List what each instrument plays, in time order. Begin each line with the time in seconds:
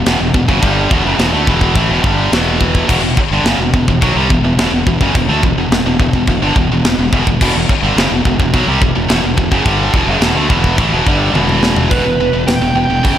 0.06 fingered electric bass E1, distorted electric guitar E2 B2, snare, china
0.20 fingered electric bass E1, distorted electric guitar E2 B2
0.34 fingered electric bass E1, distorted electric guitar E2 B2, kick
0.48 fingered electric bass F#1, distorted electric guitar F#2 C#3, kick
0.61 fingered electric bass G1, distorted electric guitar G2 D3 G3, kick, china
0.91 fingered electric bass E1, distorted electric guitar E2 B2, kick
1.05 fingered electric bass F#1, distorted electric guitar F#2 C#3
1.18 fingered electric bass E1, distorted electric guitar E2 B2, snare, china
1.33 fingered electric bass D2, distorted electric guitar D3 A3
1.47 fingered electric bass E1, distorted electric guitar E2 B2 E3, kick
1.61 kick
1.75 fingered electric bass A1, distorted electric guitar A2 E3, kick, china
1.89 fingered electric bass E1, distorted electric guitar E2 B2
2.04 fingered electric bass G1, distorted electric guitar G2 D3 G3, kick
2.32 fingered electric bass E1, distorted electric guitar E2 B2 E3, snare, china
2.61 kick
2.75 kick
2.88 fingered electric bass E1, distorted electric guitar E2 B2, kick, china, crash
3.02 fingered electric bass E1, distorted electric guitar E2 B2
3.17 muted fingered electric bass stroke, muted distorted electric guitar stroke, kick
3.31 fingered electric bass G1, distorted electric guitar G2 D3
3.44 fingered electric bass F#1, distorted electric guitar F#2 C#3, snare, china
3.58 fingered electric bass E1, distorted electric guitar E2 B2
3.73 fingered electric bass E1, distorted electric guitar E2 B2, kick
3.88 fingered electric bass E1, distorted electric guitar E2 B2, kick
4.01 fingered electric bass B1, distorted electric guitar B2 F#3, kick, china
4.16 fingered electric bass C2, distorted electric guitar C3 G3
4.30 fingered electric bass E1, distorted electric guitar E2 B2, kick
4.42 fingered electric bass E1, distorted electric guitar E2 B2
4.57 fingered electric bass E1, distorted electric guitar E2 B2, snare, china
4.71 fingered electric bass E1, distorted electric guitar E2 B2
4.87 fingered electric bass E1, distorted electric guitar E2 B2, kick
5.01 fingered electric bass F#1, distorted electric guitar F#2 C#3, kick
5.15 fingered electric bass E1, distorted electric guitar E2 B2, kick, china
5.28 fingered electric bass D2, distorted electric guitar D3 A3
5.43 fingered electric bass E1, distorted electric guitar E2 B2, kick
5.56 fingered electric bass E1, distorted electric guitar E2 B2
5.71 fingered electric bass E1, distorted electric guitar E2 B2, snare, china
5.85 fingered electric bass E1, distorted electric guitar E2 B2
6.00 fingered electric bass E1, distorted electric guitar E2 B2, kick
6.13 fingered electric bass E1, distorted electric guitar E2 B2, kick
6.27 fingered electric bass E1, distorted electric guitar E2 B2, kick, china
6.42 fingered electric bass G1, distorted electric guitar G2 D3
6.56 fingered electric bass E1, distorted electric guitar E2 B2, kick
6.71 fingered electric bass E1, distorted electric guitar E2 B2
6.84 fingered electric bass E1, distorted electric guitar E2 B2, snare, china
6.99 fingered electric bass E1, distorted electric guitar E2 B2
7.13 fingered electric bass E1, distorted electric guitar E2 B2, kick
7.27 fingered electric bass E1, distorted electric guitar E2 B2, kick
7.41 fingered electric bass E1, distorted electric guitar E2 B2, kick, china, crash
7.55 fingered electric bass E1, distorted electric guitar E2 B2
7.69 muted fingered electric bass stroke, muted distorted electric guitar stroke, kick
7.83 fingered electric bass G1, distorted electric guitar G2 D3
7.96 fingered electric bass F#1, distorted electric guitar F#2 C#3, snare, china
8.12 fingered electric bass E1, distorted electric guitar E2 B2
8.25 fingered electric bass E1, distorted electric guitar E2 B2, kick
8.39 fingered electric bass E1, distorted electric guitar E2 B2, kick
8.54 fingered electric bass B1, distorted electric guitar B2 F#3, kick, china
8.67 fingered electric bass C2, distorted electric guitar C3 G3
8.82 fingered electric bass E1, distorted electric guitar E2 B2, kick
8.95 fingered electric bass E1, distorted electric guitar E2 B2
9.08 fingered electric bass E1, distorted electric guitar E2 B2, snare, china
9.23 fingered electric bass E1, distorted electric guitar E2 B2
9.37 fingered electric bass E1, distorted electric guitar E2 B2, kick
9.51 fingered electric bass F#1, distorted electric guitar F#2 C#3, kick
9.65 fingered electric bass G1, distorted electric guitar G2 D3 G3, kick, china
9.93 fingered electric bass E1, distorted electric guitar E2 B2, kick
10.07 fingered electric bass F#1, distorted electric guitar F#2 C#3
10.21 fingered electric bass E1, distorted electric guitar E2 B2, snare, china
10.35 fingered electric bass D2, distorted electric guitar D3 A3
10.48 fingered electric bass E1, distorted electric guitar E2 B2 E3, kick
10.64 kick
10.78 fingered electric bass A1, distorted electric guitar A2 E3, kick, china
10.92 fingered electric bass E1, distorted electric guitar E2 B2
11.07 fingered electric bass G1, distorted electric guitar G2 D3 G3, kick
11.34 fingered electric bass E1, distorted electric guitar E2 B2 E3, high tom
11.49 mid tom
11.63 snare
11.76 floor tom
11.91 fingered electric bass E1, distorted electric guitar E2 B2, lead electric guitar B4, kick, open hi-hat
12.05 fingered electric bass E1, distorted electric guitar E2 B2
12.20 fingered electric bass E1, distorted electric guitar E2 B2
12.33 fingered electric bass E1, distorted electric guitar E2 B2
12.47 fingered electric bass E1, distorted electric guitar E2 B2, lead electric guitar G5, snare, open hi-hat
12.61 fingered electric bass E1, distorted electric guitar E2 B2
12.75 fingered electric bass E1, distorted electric guitar E2 B2, lead electric guitar G5
12.90 fingered electric bass E1, distorted electric guitar E2 B2
13.03 fingered electric bass F#1, distorted electric guitar F#2 C#3, kick, open hi-hat